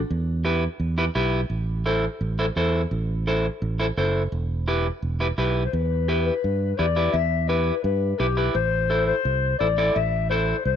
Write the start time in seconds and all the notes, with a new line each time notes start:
0.10 E2
0.45 E4 G4 B4
0.80 E2
0.98 E4 G4 B4
1.15 B1 E4 G4 B4
1.50 A1
1.86 E4 A4 C5
2.21 A1
2.39 E4 A4 C5
2.56 E2 E4 A4 C5
2.91 A1
3.27 E4 A4 C5
3.62 A1
3.80 E4 A4 C5
3.97 F#1 E4 A4 C5
4.32 E1
4.68 E4 G4 B4
5.02 E1
5.20 E4 G4 B4
5.38 B1 E4 G4 B4
5.66 C5
5.73 E2 B4
6.08 E4 G4 B4
6.26 B4
6.44 G2
6.78 E2 E4 G4 B4 D5
6.96 E4 G4 B4
7.13 E2 E5
7.48 E4 G4 B4
7.83 G2 B4
8.19 B1 E4 G4 B4
8.37 E4 G4 B4
8.54 A1 C5
8.90 E4 A4 C5
9.06 C5
9.25 C2
9.59 A1 E4 A4 C5 D5
9.78 E4 A4 D5
9.95 A1 E5
10.29 E4 A4 C5
10.65 C2 C5